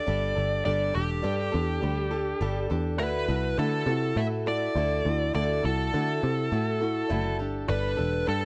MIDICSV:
0, 0, Header, 1, 4, 480
1, 0, Start_track
1, 0, Key_signature, 1, "major"
1, 0, Tempo, 586510
1, 534, Time_signature, 4, 2, 24, 8
1, 6915, End_track
2, 0, Start_track
2, 0, Title_t, "Lead electric guitar"
2, 0, Program_c, 0, 29
2, 0, Note_on_c, 0, 74, 85
2, 523, Note_off_c, 0, 74, 0
2, 533, Note_on_c, 0, 74, 89
2, 757, Note_off_c, 0, 74, 0
2, 775, Note_on_c, 0, 67, 67
2, 2182, Note_off_c, 0, 67, 0
2, 2450, Note_on_c, 0, 71, 90
2, 2934, Note_off_c, 0, 71, 0
2, 2937, Note_on_c, 0, 69, 83
2, 3414, Note_on_c, 0, 76, 84
2, 3431, Note_off_c, 0, 69, 0
2, 3479, Note_off_c, 0, 76, 0
2, 3666, Note_on_c, 0, 74, 88
2, 4348, Note_off_c, 0, 74, 0
2, 4379, Note_on_c, 0, 74, 90
2, 4600, Note_off_c, 0, 74, 0
2, 4624, Note_on_c, 0, 69, 69
2, 6027, Note_off_c, 0, 69, 0
2, 6297, Note_on_c, 0, 71, 84
2, 6778, Note_off_c, 0, 71, 0
2, 6781, Note_on_c, 0, 69, 81
2, 6915, Note_off_c, 0, 69, 0
2, 6915, End_track
3, 0, Start_track
3, 0, Title_t, "Steel-string acoustic guitar"
3, 0, Program_c, 1, 25
3, 52, Note_on_c, 1, 55, 69
3, 55, Note_on_c, 1, 62, 68
3, 61, Note_on_c, 1, 67, 75
3, 62, Note_on_c, 1, 69, 68
3, 282, Note_off_c, 1, 69, 0
3, 291, Note_on_c, 1, 69, 45
3, 293, Note_off_c, 1, 55, 0
3, 295, Note_off_c, 1, 62, 0
3, 297, Note_off_c, 1, 67, 0
3, 306, Note_on_c, 1, 67, 41
3, 308, Note_on_c, 1, 62, 40
3, 524, Note_off_c, 1, 62, 0
3, 526, Note_off_c, 1, 67, 0
3, 530, Note_on_c, 1, 55, 69
3, 533, Note_off_c, 1, 69, 0
3, 534, Note_on_c, 1, 62, 69
3, 536, Note_on_c, 1, 67, 75
3, 541, Note_on_c, 1, 69, 77
3, 755, Note_off_c, 1, 69, 0
3, 764, Note_on_c, 1, 69, 49
3, 767, Note_off_c, 1, 67, 0
3, 770, Note_off_c, 1, 62, 0
3, 772, Note_off_c, 1, 55, 0
3, 777, Note_on_c, 1, 67, 44
3, 779, Note_on_c, 1, 62, 39
3, 998, Note_off_c, 1, 62, 0
3, 1000, Note_on_c, 1, 55, 69
3, 1003, Note_off_c, 1, 67, 0
3, 1004, Note_off_c, 1, 69, 0
3, 1007, Note_on_c, 1, 62, 60
3, 1012, Note_on_c, 1, 67, 70
3, 1014, Note_on_c, 1, 69, 73
3, 1233, Note_off_c, 1, 69, 0
3, 1243, Note_on_c, 1, 69, 51
3, 1244, Note_off_c, 1, 67, 0
3, 1247, Note_off_c, 1, 55, 0
3, 1248, Note_off_c, 1, 62, 0
3, 1254, Note_on_c, 1, 67, 43
3, 1257, Note_on_c, 1, 62, 40
3, 1479, Note_off_c, 1, 62, 0
3, 1481, Note_on_c, 1, 55, 55
3, 1486, Note_off_c, 1, 67, 0
3, 1487, Note_off_c, 1, 69, 0
3, 1488, Note_on_c, 1, 62, 63
3, 1496, Note_on_c, 1, 67, 59
3, 1496, Note_on_c, 1, 69, 62
3, 1714, Note_off_c, 1, 69, 0
3, 1724, Note_off_c, 1, 67, 0
3, 1724, Note_on_c, 1, 69, 54
3, 1727, Note_off_c, 1, 55, 0
3, 1731, Note_off_c, 1, 62, 0
3, 1733, Note_on_c, 1, 67, 46
3, 1744, Note_on_c, 1, 62, 42
3, 1961, Note_off_c, 1, 62, 0
3, 1966, Note_off_c, 1, 67, 0
3, 1969, Note_off_c, 1, 69, 0
3, 1969, Note_on_c, 1, 55, 73
3, 1971, Note_on_c, 1, 62, 76
3, 1976, Note_on_c, 1, 67, 80
3, 1978, Note_on_c, 1, 69, 74
3, 2197, Note_off_c, 1, 69, 0
3, 2205, Note_off_c, 1, 67, 0
3, 2207, Note_on_c, 1, 69, 53
3, 2212, Note_off_c, 1, 55, 0
3, 2213, Note_off_c, 1, 62, 0
3, 2215, Note_on_c, 1, 67, 50
3, 2223, Note_on_c, 1, 62, 45
3, 2441, Note_on_c, 1, 50, 68
3, 2443, Note_off_c, 1, 62, 0
3, 2443, Note_off_c, 1, 69, 0
3, 2445, Note_on_c, 1, 57, 74
3, 2447, Note_on_c, 1, 64, 76
3, 2448, Note_off_c, 1, 67, 0
3, 2452, Note_on_c, 1, 66, 76
3, 2453, Note_on_c, 1, 69, 78
3, 2677, Note_off_c, 1, 69, 0
3, 2686, Note_off_c, 1, 66, 0
3, 2687, Note_on_c, 1, 69, 48
3, 2688, Note_off_c, 1, 50, 0
3, 2690, Note_off_c, 1, 57, 0
3, 2691, Note_off_c, 1, 64, 0
3, 2696, Note_on_c, 1, 66, 51
3, 2705, Note_on_c, 1, 64, 42
3, 2920, Note_off_c, 1, 64, 0
3, 2920, Note_off_c, 1, 66, 0
3, 2924, Note_off_c, 1, 69, 0
3, 2926, Note_on_c, 1, 50, 60
3, 2927, Note_on_c, 1, 57, 66
3, 2929, Note_on_c, 1, 66, 71
3, 2930, Note_on_c, 1, 64, 66
3, 2934, Note_on_c, 1, 69, 69
3, 3158, Note_off_c, 1, 69, 0
3, 3167, Note_on_c, 1, 69, 51
3, 3169, Note_off_c, 1, 66, 0
3, 3170, Note_off_c, 1, 50, 0
3, 3171, Note_off_c, 1, 57, 0
3, 3173, Note_off_c, 1, 64, 0
3, 3179, Note_on_c, 1, 66, 46
3, 3182, Note_on_c, 1, 64, 43
3, 3403, Note_off_c, 1, 64, 0
3, 3407, Note_off_c, 1, 66, 0
3, 3407, Note_on_c, 1, 57, 52
3, 3411, Note_off_c, 1, 69, 0
3, 3413, Note_on_c, 1, 64, 51
3, 3417, Note_on_c, 1, 66, 57
3, 3425, Note_on_c, 1, 69, 59
3, 3642, Note_off_c, 1, 69, 0
3, 3651, Note_off_c, 1, 57, 0
3, 3651, Note_on_c, 1, 69, 48
3, 3653, Note_off_c, 1, 66, 0
3, 3654, Note_off_c, 1, 64, 0
3, 3663, Note_on_c, 1, 66, 43
3, 3667, Note_on_c, 1, 64, 39
3, 3888, Note_off_c, 1, 64, 0
3, 3893, Note_off_c, 1, 69, 0
3, 3894, Note_off_c, 1, 66, 0
3, 3897, Note_on_c, 1, 50, 67
3, 3898, Note_on_c, 1, 57, 62
3, 3898, Note_on_c, 1, 64, 74
3, 3904, Note_on_c, 1, 66, 68
3, 3906, Note_on_c, 1, 69, 73
3, 4121, Note_off_c, 1, 69, 0
3, 4131, Note_on_c, 1, 69, 44
3, 4133, Note_off_c, 1, 66, 0
3, 4136, Note_off_c, 1, 50, 0
3, 4137, Note_off_c, 1, 57, 0
3, 4137, Note_off_c, 1, 64, 0
3, 4143, Note_on_c, 1, 66, 43
3, 4150, Note_on_c, 1, 64, 34
3, 4363, Note_off_c, 1, 66, 0
3, 4363, Note_on_c, 1, 50, 72
3, 4365, Note_off_c, 1, 64, 0
3, 4370, Note_off_c, 1, 69, 0
3, 4373, Note_on_c, 1, 57, 74
3, 4373, Note_on_c, 1, 66, 73
3, 4375, Note_on_c, 1, 64, 74
3, 4379, Note_on_c, 1, 69, 79
3, 4598, Note_off_c, 1, 69, 0
3, 4608, Note_on_c, 1, 69, 53
3, 4609, Note_off_c, 1, 50, 0
3, 4610, Note_off_c, 1, 66, 0
3, 4614, Note_off_c, 1, 57, 0
3, 4615, Note_off_c, 1, 64, 0
3, 4620, Note_on_c, 1, 66, 44
3, 4625, Note_on_c, 1, 64, 38
3, 4846, Note_off_c, 1, 64, 0
3, 4851, Note_off_c, 1, 66, 0
3, 4852, Note_off_c, 1, 69, 0
3, 4852, Note_on_c, 1, 50, 65
3, 4854, Note_on_c, 1, 57, 67
3, 4856, Note_on_c, 1, 64, 64
3, 4861, Note_on_c, 1, 66, 77
3, 4861, Note_on_c, 1, 69, 72
3, 5080, Note_off_c, 1, 69, 0
3, 5089, Note_off_c, 1, 66, 0
3, 5090, Note_on_c, 1, 69, 51
3, 5094, Note_off_c, 1, 50, 0
3, 5095, Note_off_c, 1, 57, 0
3, 5096, Note_off_c, 1, 64, 0
3, 5099, Note_on_c, 1, 66, 42
3, 5108, Note_on_c, 1, 64, 38
3, 5326, Note_off_c, 1, 64, 0
3, 5331, Note_on_c, 1, 57, 58
3, 5332, Note_off_c, 1, 66, 0
3, 5333, Note_off_c, 1, 69, 0
3, 5336, Note_on_c, 1, 64, 59
3, 5342, Note_on_c, 1, 66, 59
3, 5345, Note_on_c, 1, 69, 61
3, 5560, Note_off_c, 1, 69, 0
3, 5566, Note_off_c, 1, 66, 0
3, 5569, Note_on_c, 1, 69, 50
3, 5573, Note_off_c, 1, 57, 0
3, 5576, Note_off_c, 1, 64, 0
3, 5576, Note_on_c, 1, 66, 46
3, 5585, Note_on_c, 1, 64, 43
3, 5802, Note_off_c, 1, 64, 0
3, 5804, Note_on_c, 1, 50, 74
3, 5807, Note_off_c, 1, 66, 0
3, 5808, Note_off_c, 1, 69, 0
3, 5809, Note_on_c, 1, 57, 77
3, 5812, Note_on_c, 1, 64, 75
3, 5817, Note_on_c, 1, 66, 76
3, 5818, Note_on_c, 1, 69, 80
3, 6036, Note_off_c, 1, 69, 0
3, 6046, Note_on_c, 1, 69, 53
3, 6050, Note_off_c, 1, 50, 0
3, 6051, Note_off_c, 1, 66, 0
3, 6052, Note_off_c, 1, 57, 0
3, 6054, Note_off_c, 1, 64, 0
3, 6055, Note_on_c, 1, 67, 49
3, 6066, Note_on_c, 1, 62, 38
3, 6280, Note_off_c, 1, 62, 0
3, 6283, Note_off_c, 1, 67, 0
3, 6284, Note_off_c, 1, 69, 0
3, 6285, Note_on_c, 1, 55, 62
3, 6289, Note_on_c, 1, 62, 70
3, 6292, Note_on_c, 1, 67, 75
3, 6294, Note_on_c, 1, 69, 73
3, 6511, Note_off_c, 1, 69, 0
3, 6521, Note_off_c, 1, 67, 0
3, 6521, Note_on_c, 1, 69, 52
3, 6527, Note_off_c, 1, 62, 0
3, 6530, Note_off_c, 1, 55, 0
3, 6530, Note_on_c, 1, 67, 46
3, 6537, Note_on_c, 1, 62, 42
3, 6758, Note_off_c, 1, 62, 0
3, 6759, Note_off_c, 1, 67, 0
3, 6759, Note_on_c, 1, 55, 62
3, 6762, Note_off_c, 1, 69, 0
3, 6767, Note_on_c, 1, 62, 60
3, 6769, Note_on_c, 1, 67, 66
3, 6772, Note_on_c, 1, 69, 65
3, 6915, Note_off_c, 1, 55, 0
3, 6915, Note_off_c, 1, 62, 0
3, 6915, Note_off_c, 1, 67, 0
3, 6915, Note_off_c, 1, 69, 0
3, 6915, End_track
4, 0, Start_track
4, 0, Title_t, "Picked electric bass"
4, 0, Program_c, 2, 34
4, 63, Note_on_c, 2, 31, 74
4, 266, Note_off_c, 2, 31, 0
4, 299, Note_on_c, 2, 31, 77
4, 503, Note_off_c, 2, 31, 0
4, 541, Note_on_c, 2, 31, 78
4, 744, Note_off_c, 2, 31, 0
4, 780, Note_on_c, 2, 28, 82
4, 984, Note_off_c, 2, 28, 0
4, 1015, Note_on_c, 2, 43, 78
4, 1221, Note_off_c, 2, 43, 0
4, 1262, Note_on_c, 2, 40, 79
4, 1466, Note_off_c, 2, 40, 0
4, 1495, Note_on_c, 2, 38, 78
4, 1908, Note_off_c, 2, 38, 0
4, 1970, Note_on_c, 2, 31, 72
4, 2179, Note_off_c, 2, 31, 0
4, 2216, Note_on_c, 2, 40, 73
4, 2453, Note_off_c, 2, 40, 0
4, 2453, Note_on_c, 2, 38, 82
4, 2661, Note_off_c, 2, 38, 0
4, 2689, Note_on_c, 2, 36, 78
4, 2898, Note_off_c, 2, 36, 0
4, 2931, Note_on_c, 2, 50, 76
4, 3140, Note_off_c, 2, 50, 0
4, 3161, Note_on_c, 2, 48, 74
4, 3374, Note_off_c, 2, 48, 0
4, 3406, Note_on_c, 2, 45, 76
4, 3823, Note_off_c, 2, 45, 0
4, 3891, Note_on_c, 2, 38, 80
4, 4100, Note_off_c, 2, 38, 0
4, 4134, Note_on_c, 2, 38, 78
4, 4341, Note_off_c, 2, 38, 0
4, 4376, Note_on_c, 2, 38, 83
4, 4582, Note_off_c, 2, 38, 0
4, 4619, Note_on_c, 2, 36, 78
4, 4824, Note_off_c, 2, 36, 0
4, 4860, Note_on_c, 2, 50, 81
4, 5065, Note_off_c, 2, 50, 0
4, 5101, Note_on_c, 2, 48, 70
4, 5305, Note_off_c, 2, 48, 0
4, 5335, Note_on_c, 2, 45, 71
4, 5749, Note_off_c, 2, 45, 0
4, 5816, Note_on_c, 2, 30, 72
4, 6054, Note_off_c, 2, 30, 0
4, 6054, Note_on_c, 2, 31, 76
4, 6261, Note_off_c, 2, 31, 0
4, 6293, Note_on_c, 2, 31, 80
4, 6501, Note_off_c, 2, 31, 0
4, 6537, Note_on_c, 2, 28, 80
4, 6743, Note_off_c, 2, 28, 0
4, 6777, Note_on_c, 2, 43, 75
4, 6915, Note_off_c, 2, 43, 0
4, 6915, End_track
0, 0, End_of_file